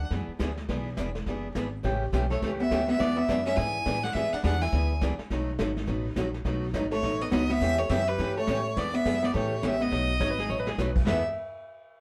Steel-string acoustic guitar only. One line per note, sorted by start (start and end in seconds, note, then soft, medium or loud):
0.12 0.31 E3 medium
0.12 0.31 B3 medium
0.12 0.31 D4 medium
0.12 0.32 G#4 medium
0.39 0.50 E3 medium
0.39 0.51 B3 medium
0.39 0.51 D4 medium
0.39 0.51 G#4 medium
0.69 0.88 E3 medium
0.69 0.88 B3 medium
0.69 0.89 D4 medium
0.69 0.89 G#4 medium
0.98 1.09 E3 medium
0.98 1.09 B3 medium
0.98 1.09 D4 medium
0.98 1.09 G#4 medium
1.27 1.47 E3 medium
1.27 1.47 B3 medium
1.27 1.47 D4 medium
1.27 1.47 G#4 medium
1.56 1.67 E3 medium
1.56 1.67 B3 medium
1.56 1.67 D4 medium
1.56 1.67 G#4 medium
1.83 2.03 C#3 medium
1.83 2.04 E3 medium
1.83 2.04 A3 medium
1.83 2.04 C#4 medium
1.83 2.04 G4 medium
2.12 2.24 C#3 medium
2.12 2.24 E3 medium
2.12 2.24 A3 medium
2.12 2.24 C#4 medium
2.12 2.24 G4 medium
2.42 2.61 C#3 medium
2.42 2.62 E3 medium
2.42 2.62 A3 medium
2.42 2.62 C#4 medium
2.42 2.62 G4 medium
2.71 2.82 C#3 medium
2.71 2.82 E3 medium
2.71 2.82 A3 medium
2.71 2.82 C#4 medium
2.71 2.83 G4 medium
3.00 3.19 E3 medium
3.00 3.20 B3 medium
3.00 3.20 D4 medium
3.00 3.20 G#4 medium
3.28 3.39 E3 medium
3.28 3.40 B3 medium
3.28 3.40 D4 medium
3.28 3.40 G#4 medium
3.57 3.77 E3 medium
3.57 3.77 B3 medium
3.57 3.77 D4 medium
3.57 3.77 G#4 medium
3.86 3.97 E3 medium
3.86 3.97 B3 medium
3.86 3.97 D4 medium
3.86 3.98 G#4 medium
4.15 4.35 E3 medium
4.15 4.35 B3 medium
4.15 4.35 D4 medium
4.15 4.35 G#4 medium
4.44 4.55 E3 medium
4.44 4.55 B3 medium
4.44 4.55 D4 medium
4.44 4.55 G#4 medium
4.72 4.92 E3 medium
4.72 4.93 B3 medium
4.72 4.93 D4 medium
4.72 4.93 G#4 medium
5.02 5.13 E3 medium
5.02 5.13 B3 medium
5.02 5.13 D4 medium
5.02 5.14 G#4 medium
5.30 5.50 B2 medium
5.30 5.50 F#3 medium
5.30 5.51 A3 medium
5.30 5.51 D#4 medium
5.30 5.51 F#4 medium
5.59 5.70 B2 medium
5.59 5.70 F#3 medium
5.59 5.71 A3 medium
5.59 5.70 D#4 medium
5.59 5.71 F#4 medium
5.87 6.07 B2 medium
5.87 6.07 F#3 medium
5.87 6.07 A3 medium
5.87 6.08 D#4 medium
5.87 6.08 F#4 medium
6.16 6.28 B2 medium
6.16 6.28 F#3 medium
6.16 6.28 A3 medium
6.16 6.28 D#4 medium
6.16 6.28 F#4 medium
6.46 6.65 B2 medium
6.46 6.66 F#3 medium
6.46 6.66 A3 medium
6.46 6.66 D#4 medium
6.46 6.66 F#4 medium
6.74 6.85 B2 medium
6.74 6.85 F#3 medium
6.74 6.85 A3 medium
6.74 6.86 D#4 medium
6.74 6.86 F#4 medium
7.03 7.23 B2 medium
7.03 7.23 F#3 medium
7.03 7.23 A3 medium
7.03 7.23 D#4 medium
7.03 7.23 F#4 medium
7.32 7.43 B2 medium
7.32 7.43 F#3 medium
7.32 7.43 A3 medium
7.32 7.43 D#4 medium
7.32 7.44 F#4 medium
7.60 7.80 C#3 medium
7.60 7.81 E3 medium
7.60 7.81 A3 medium
7.60 7.81 C#4 medium
7.60 7.81 G4 medium
7.90 8.01 C#3 medium
7.90 8.01 E3 medium
7.90 8.01 A3 medium
7.90 8.01 C#4 medium
7.90 8.01 G4 medium
8.19 8.38 C#3 medium
8.19 8.39 E3 soft
8.19 8.39 A3 medium
8.19 8.39 C#4 medium
8.19 8.39 G4 medium
8.48 8.59 C#3 medium
8.48 8.59 E3 medium
8.48 8.59 A3 medium
8.48 8.59 C#4 medium
8.48 8.60 G4 medium
8.77 8.96 E3 medium
8.77 8.96 B3 medium
8.77 8.97 D4 medium
8.77 8.97 G#4 medium
9.05 9.16 E3 medium
9.05 9.16 B3 medium
9.05 9.17 D4 medium
9.05 9.17 G#4 medium
9.34 9.54 C#3 medium
9.34 9.54 E3 medium
9.34 9.54 A3 medium
9.34 9.54 C#4 medium
9.34 9.54 G4 medium
9.63 9.74 C#3 medium
9.63 9.74 E3 medium
9.63 9.74 A3 medium
9.63 9.74 C#4 medium
9.63 9.74 G4 medium
9.91 10.11 B2 medium
9.91 10.11 F#3 medium
9.91 10.11 A3 medium
9.91 10.11 D#4 medium
9.91 10.11 F#4 medium
10.20 10.31 B2 medium
10.20 10.31 F#3 medium
10.20 10.31 A3 medium
10.20 10.32 D#4 medium
10.20 10.32 F#4 medium
10.49 10.69 B2 medium
10.49 10.69 F#3 medium
10.49 10.69 A3 medium
10.49 10.69 D#4 medium
10.49 10.70 F#4 medium
10.78 10.89 B2 medium
10.78 10.89 F#3 medium
10.78 10.90 A3 medium
10.78 10.90 D#4 medium
10.78 10.90 F#4 medium
11.07 11.21 E3 medium
11.07 11.21 B3 medium
11.07 11.22 D4 medium
11.07 11.22 G#4 medium